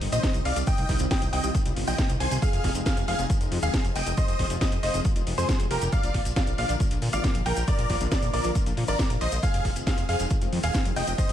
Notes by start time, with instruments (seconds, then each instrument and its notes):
0.01 analog synth bass G1, open hi-hat
0.12 analog synth bass A#1, analog synth pad C3 D#3 G3 D#4, supersaw synth C5 D#5, grand piano D#5, closed hi-hat, maracas
0.23 kick, snare, closed hi-hat, maracas
0.34 analog synth bass C2, analog synth pad C3 D#3 G3 D#4, closed hi-hat, maracas
0.45 analog synth bass C2, supersaw synth D5 F5, grand piano F5, open hi-hat
0.56 analog synth bass C2, closed hi-hat, maracas
0.67 analog synth pad C3 D#3 G3 F4, supersaw synth D#5 G5, grand piano G5, kick, closed hi-hat, maracas
0.78 analog synth bass C2, closed hi-hat, maracas
0.89 analog synth bass C2, analog synth pad C3 D#3 G3 F4, kick, open hi-hat
0.99 analog synth bass C2, closed hi-hat, maracas
1.11 analog synth pad C3 D#3 G3 F4, supersaw synth D#5 G5, grand piano G5, kick, snare, closed hi-hat, maracas
1.22 analog synth bass C2, analog synth pad C3 D#3 G3 F4, closed hi-hat, maracas
1.33 analog synth bass C2, analog synth pad C3 D#3 G3 F4, supersaw synth D#5 G5, grand piano G5, open hi-hat
1.44 analog synth bass C2, closed hi-hat, maracas
1.55 analog synth pad C3 D#3 G3 F4, kick, closed hi-hat, maracas
1.66 analog synth bass C2, analog synth pad C3 D#3 G3 F4, closed hi-hat, maracas
1.76 analog synth bass G1, open hi-hat
1.87 analog synth bass A#1, analog synth pad C3 D#3 G3 F4, supersaw synth D#5 G5, grand piano G5, open hi-hat, maracas
1.98 kick, snare, closed hi-hat, maracas
2.09 analog synth bass C2, analog synth pad C3 D#3 G3 F4, closed hi-hat, maracas
2.20 analog synth bass C2, supersaw synth C5 G#5, grand piano G#5, open hi-hat
2.31 analog synth bass C2, closed hi-hat, maracas
2.42 analog synth pad C3 F3 G#3 D#4, supersaw synth G#4 F5, grand piano F5, kick, closed hi-hat, maracas
2.53 analog synth bass F1, closed hi-hat, maracas
2.64 analog synth bass F1, analog synth pad C3 F3 G#3 D#4, kick, open hi-hat
2.75 analog synth bass F1, closed hi-hat, maracas
2.86 analog synth pad C3 F3 G#3 D#4, supersaw synth G#4 F5, grand piano F5, kick, snare, closed hi-hat, maracas
2.97 analog synth bass F1, analog synth pad C3 F3 G#3 D#4, closed hi-hat, maracas
3.08 analog synth bass F1, analog synth pad C3 F3 G#3 D#4, supersaw synth G#4 F5, grand piano F5, open hi-hat
3.19 analog synth bass F1, closed hi-hat, maracas
3.30 analog synth pad C3 F3 G#3 D#4, kick, closed hi-hat, maracas
3.41 analog synth bass F1, analog synth pad C3 F3 G#3 D#4, closed hi-hat, maracas
3.52 analog synth bass F2, open hi-hat
3.62 analog synth bass D#1, analog synth pad C3 F3 G#3 D#4, supersaw synth G#4 F5, grand piano F5, closed hi-hat, maracas
3.74 kick, snare, closed hi-hat, maracas
3.85 analog synth bass F1, analog synth pad C3 F3 G#3 D#4, closed hi-hat, maracas
3.95 analog synth bass F1, supersaw synth D#5 G5, grand piano G5, open hi-hat
4.06 analog synth bass F1, closed hi-hat, maracas
4.17 analog synth pad C3 F3 G#3 F4, supersaw synth C5 D#5, grand piano D#5, kick, closed hi-hat, maracas
4.28 analog synth bass F1, closed hi-hat, maracas
4.39 analog synth bass F1, analog synth pad C3 F3 G#3 F4, kick, open hi-hat
4.50 analog synth bass F1, closed hi-hat, maracas
4.61 analog synth pad C3 F3 G#3 F4, supersaw synth C5 D#5, grand piano D#5, kick, snare, closed hi-hat, maracas
4.72 analog synth bass F1, analog synth pad C3 F3 G#3 F4, closed hi-hat, maracas
4.83 analog synth bass F1, analog synth pad C3 F3 G#3 F4, supersaw synth C5 D#5, grand piano D#5, open hi-hat
4.94 analog synth bass F1, closed hi-hat, maracas
5.05 analog synth pad C3 F3 G#3 F4, kick, closed hi-hat, maracas
5.16 analog synth bass F1, analog synth pad C3 F3 G#3 F4, closed hi-hat, maracas
5.27 analog synth bass F1, open hi-hat
5.38 analog synth bass F2, analog synth pad C3 F3 G#3 F4, supersaw synth G#4 C5, grand piano C5, open hi-hat, maracas
5.49 kick, snare, closed hi-hat, maracas
5.60 analog synth bass F1, analog synth pad C3 F3 G#3 F4, closed hi-hat, maracas
5.71 analog synth bass F1, supersaw synth G4 A#4, grand piano A#4, open hi-hat
5.81 analog synth bass F1, closed hi-hat, maracas
5.92 analog synth pad D3 F3 A#3 F4, supersaw synth D5 F5, grand piano F5, kick, closed hi-hat, maracas
6.03 analog synth bass A#1, closed hi-hat, maracas
6.14 analog synth bass A#1, analog synth pad D3 F3 A#3 F4, kick, open hi-hat
6.25 analog synth bass A#1, closed hi-hat, maracas
6.36 analog synth pad D3 F3 A#3 F4, supersaw synth D5 F5, grand piano F5, kick, snare, closed hi-hat, maracas
6.47 analog synth bass A#1, analog synth pad D3 F3 A#3 F4, closed hi-hat, maracas
6.58 analog synth bass A#1, analog synth pad D3 F3 A#3 F4, supersaw synth D5 F5, grand piano F5, open hi-hat
6.69 analog synth bass A#1, closed hi-hat, maracas
6.80 analog synth pad D3 F3 A#3 F4, kick, closed hi-hat, maracas
6.91 analog synth bass A#1, analog synth pad D3 F3 A#3 F4, closed hi-hat, maracas
7.02 analog synth bass A#2, open hi-hat
7.13 analog synth bass G#1, analog synth pad D3 F3 A#3 F4, supersaw synth D5 F5, grand piano F5, closed hi-hat, maracas
7.24 kick, snare, closed hi-hat, maracas
7.34 analog synth bass A#1, analog synth pad D3 F3 A#3 F4, closed hi-hat, maracas
7.46 analog synth bass A#1, supersaw synth A#4 G5, grand piano G5, open hi-hat
7.56 analog synth bass A#1, closed hi-hat, maracas
7.67 analog synth pad D3 F3 A#3 F4, supersaw synth A#4 D5, grand piano D5, kick, closed hi-hat, maracas
7.78 analog synth bass A#1, closed hi-hat, maracas
7.90 analog synth bass A#1, analog synth pad D3 F3 A#3 F4, kick, open hi-hat
8.00 analog synth bass A#1, closed hi-hat, maracas
8.11 analog synth pad D3 F3 A#3 F4, supersaw synth A#4 D5, grand piano D5, kick, snare, closed hi-hat, maracas
8.22 analog synth bass A#1, analog synth pad D3 F3 A#3 F4, closed hi-hat, maracas
8.33 analog synth bass A#1, analog synth pad D3 F3 A#3 F4, supersaw synth A#4 D5, grand piano D5, open hi-hat
8.44 analog synth bass A#1, closed hi-hat, maracas
8.55 analog synth pad D3 F3 A#3 F4, kick, closed hi-hat, maracas
8.66 analog synth bass A#1, analog synth pad D3 F3 A#3 F4, closed hi-hat, maracas
8.77 analog synth bass A#2, open hi-hat
8.87 analog synth bass G#1, analog synth pad D3 F3 A#3 F4, supersaw synth A#4 D5, grand piano D5, open hi-hat, maracas
8.99 kick, snare, closed hi-hat, maracas
9.10 analog synth bass A#1, analog synth pad D3 F3 A#3 F4, closed hi-hat, maracas
9.21 analog synth bass A#1, supersaw synth C5 D#5, grand piano D#5, open hi-hat
9.32 analog synth bass A#1, closed hi-hat, maracas
9.43 analog synth pad D#3 G#3 C4 F4, supersaw synth G#4 F5, grand piano F5, kick, closed hi-hat, maracas
9.54 analog synth bass F1, closed hi-hat, maracas
9.65 analog synth bass F1, analog synth pad D#3 G#3 C4 F4, kick, open hi-hat
9.76 analog synth bass F1, closed hi-hat, maracas
9.87 analog synth pad D#3 G#3 C4 F4, supersaw synth G#4 F5, grand piano F5, kick, snare, closed hi-hat, maracas
9.97 analog synth bass F1, analog synth pad D#3 G#3 C4 F4, closed hi-hat, maracas
10.09 analog synth bass F1, analog synth pad D#3 G#3 C4 F4, supersaw synth G#4 F5, grand piano F5, open hi-hat
10.20 analog synth bass F1, closed hi-hat, maracas
10.30 analog synth pad D#3 G#3 C4 F4, kick, closed hi-hat, maracas
10.41 analog synth bass F1, analog synth pad D#3 G#3 C4 F4, closed hi-hat, maracas
10.53 analog synth bass F2, open hi-hat
10.63 analog synth bass D#1, analog synth pad D#3 G#3 C4 F4, supersaw synth G#4 F5, grand piano F5, closed hi-hat, maracas
10.74 kick, snare, closed hi-hat, maracas
10.85 analog synth bass F1, analog synth pad D#3 G#3 C4 F4, closed hi-hat, maracas
10.96 analog synth bass F1, supersaw synth D#5 G5, grand piano G5, open hi-hat
11.07 analog synth bass F1, closed hi-hat, maracas
11.18 analog synth pad D#3 G#3 C4 G4, supersaw synth C5 D#5, grand piano D#5, kick, closed hi-hat, maracas
11.29 analog synth bass F1, closed hi-hat, maracas